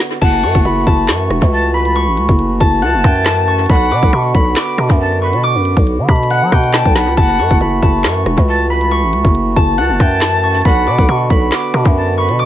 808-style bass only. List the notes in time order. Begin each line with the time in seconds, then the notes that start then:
0.22 F#1
0.43 F#2
0.55 F#1
0.65 F#1
0.87 F#1
1.09 F#2
1.30 E1
1.42 C#2
2.07 A1
2.17 C#2
2.29 F#1
2.61 F#1
2.83 C#2
2.94 F#1
3.04 F#2
3.69 B1
3.91 B2
4.03 B1
4.13 B2
4.35 B1
4.78 B2
4.90 F#2
5.33 B2
5.55 F#2
5.77 B1
5.98 D3
6.09 B2
6.42 F#3
6.52 B2
6.86 B1
7.07 C#2
7.17 F#1
7.39 F#2
7.51 F#1
7.61 F#1
7.83 F#1
8.04 F#2
8.26 E1
8.38 C#2
9.03 A1
9.13 C#2
9.25 F#1
9.56 F#1
9.78 C#2
9.90 F#1
10.00 F#2
10.65 B1
10.87 B2
10.98 B1
11.09 B2
11.30 B1
11.74 B2
11.85 F#2
12.29 B2